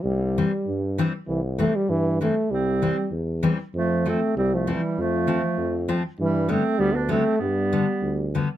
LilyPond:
<<
  \new Staff \with { instrumentName = "Clarinet" } { \time 2/4 \key c \major \tempo 4 = 98 r2 | r2 | c'4 r4 | a8 c'8 c'16 a16 g8 |
a4. r8 | g8 c'8 b16 d'16 c'8 | b4. r8 | }
  \new Staff \with { instrumentName = "Euphonium" } { \clef bass \time 2/4 \key c \major g4. r8 | e8 a16 g16 e8 a8 | g4 r4 | f8 a8 g16 f16 e8 |
f4. r8 | e8 a8 g16 b16 a8 | g4. r8 | }
  \new Staff \with { instrumentName = "Steel-string acoustic guitar" } { \clef bass \time 2/4 \key c \major r8 <e g c'>8 r8 <e g c'>8 | r8 <e g c'>8 r8 <e g c'>8 | r8 <e g c'>8 r8 <e g c'>8 | r8 <f a c'>8 r8 <f a c'>8 |
r8 <f a c'>8 r8 <f a c'>8 | r8 <d g b>8 r8 <d g b>8 | r8 <d g b>8 r8 <d g b>8 | }
  \new Staff \with { instrumentName = "Tuba" } { \clef bass \time 2/4 \key c \major c,4 g,4 | c,4 g,4 | c,4 e,4 | f,4 c,4 |
f,4 f,4 | g,4 d,4 | g,4 d,4 | }
>>